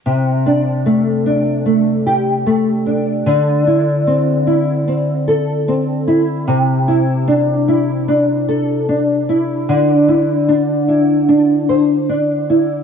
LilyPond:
\new Staff \with { instrumentName = "Nylon-string guitar" } { \time 4/4 \key c \major \tempo 4 = 75 c8 d'8 a8 d'8 a8 g'8 a8 d'8 | d8 e'8 c'8 e'8 c'8 a'8 c'8 e'8 | c8 e'8 d'8 e'8 d'8 a'8 d'8 e'8 | d8 e'8 d'8 e'8 d'8 c''8 d'8 e'8 | }